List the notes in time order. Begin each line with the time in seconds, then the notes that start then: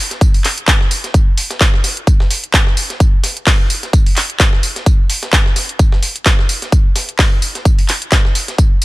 0.11 snare, closed hi-hat
0.21 kick, closed hi-hat, tambourine
0.34 open hi-hat
0.44 clap, open hi-hat, tambourine
0.58 closed hi-hat
0.68 kick, snare, clap, closed hi-hat, tambourine
0.81 snare
0.91 open hi-hat, tambourine
1.04 snare, closed hi-hat
1.14 kick, closed hi-hat, tambourine
1.37 open hi-hat, tambourine
1.50 snare, closed hi-hat
1.61 kick, snare, clap, closed hi-hat, tambourine
1.74 snare
1.84 snare, open hi-hat, tambourine
1.97 closed hi-hat
2.07 kick, closed hi-hat, tambourine
2.20 snare
2.30 open hi-hat, tambourine
2.44 closed hi-hat
2.54 kick, snare, clap, closed hi-hat, tambourine
2.67 snare
2.77 open hi-hat, tambourine
2.90 snare, closed hi-hat
3.00 kick, closed hi-hat, tambourine
3.24 snare, open hi-hat, tambourine
3.37 closed hi-hat
3.47 kick, snare, clap, closed hi-hat, open hi-hat
3.70 open hi-hat, tambourine
3.83 snare, closed hi-hat
3.93 kick, closed hi-hat, tambourine
4.06 open hi-hat
4.16 clap, open hi-hat, tambourine
4.30 closed hi-hat
4.40 kick, snare, clap, closed hi-hat, tambourine
4.53 snare
4.63 open hi-hat, tambourine
4.76 snare, closed hi-hat
4.86 kick, closed hi-hat, tambourine
5.10 open hi-hat, tambourine
5.23 snare, closed hi-hat
5.33 kick, snare, clap, closed hi-hat, tambourine
5.46 snare
5.56 snare, open hi-hat, tambourine
5.69 closed hi-hat
5.79 kick, closed hi-hat, tambourine
5.92 snare
6.03 open hi-hat, tambourine
6.16 closed hi-hat
6.26 kick, snare, clap, closed hi-hat, tambourine
6.39 snare
6.49 open hi-hat, tambourine
6.62 snare, closed hi-hat
6.72 kick, closed hi-hat, tambourine
6.96 snare, open hi-hat, tambourine
7.09 closed hi-hat
7.19 kick, snare, clap, closed hi-hat, open hi-hat
7.42 open hi-hat, tambourine
7.55 snare, closed hi-hat
7.65 kick, closed hi-hat, tambourine
7.79 open hi-hat
7.89 clap, open hi-hat, tambourine
8.02 closed hi-hat
8.12 kick, snare, clap, closed hi-hat, tambourine
8.25 snare
8.35 open hi-hat, tambourine
8.48 snare, closed hi-hat
8.58 kick, closed hi-hat, tambourine
8.82 open hi-hat, tambourine